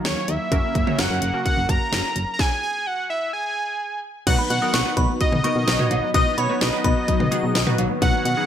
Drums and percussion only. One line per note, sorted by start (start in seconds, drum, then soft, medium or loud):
0.05 snare loud
0.05 closed hi-hat medium
0.28 closed hi-hat medium
0.52 kick loud
0.52 closed hi-hat medium
0.75 kick medium
0.75 closed hi-hat medium
0.87 mid tom medium
0.99 snare loud
0.99 closed hi-hat medium
1.22 closed hi-hat medium
1.46 kick medium
1.46 closed hi-hat medium
1.69 kick medium
1.69 closed hi-hat medium
1.93 snare loud
1.93 closed hi-hat medium
2.16 closed hi-hat medium
2.39 kick loud
2.39 snare medium
4.27 kick loud
4.27 closed hi-hat medium
4.27 crash loud
4.50 closed hi-hat medium
4.74 snare loud
4.74 closed hi-hat medium
4.97 kick loud
4.97 closed hi-hat medium
5.21 kick loud
5.21 closed hi-hat medium
5.32 mid tom loud
5.44 closed hi-hat medium
5.68 snare loud
5.68 closed hi-hat medium
5.79 mid tom loud
5.91 closed hi-hat medium
5.91 cowbell medium
6.14 kick loud
6.14 closed hi-hat medium
6.38 closed hi-hat medium
6.61 snare loud
6.61 closed hi-hat medium
6.84 kick loud
6.84 closed hi-hat medium
7.08 kick medium
7.08 closed hi-hat medium
7.20 mid tom medium
7.32 closed hi-hat medium
7.55 snare loud
7.55 closed hi-hat medium
7.67 mid tom loud
7.78 closed hi-hat medium
7.78 cowbell medium
8.02 kick loud
8.02 closed hi-hat medium
8.25 closed hi-hat medium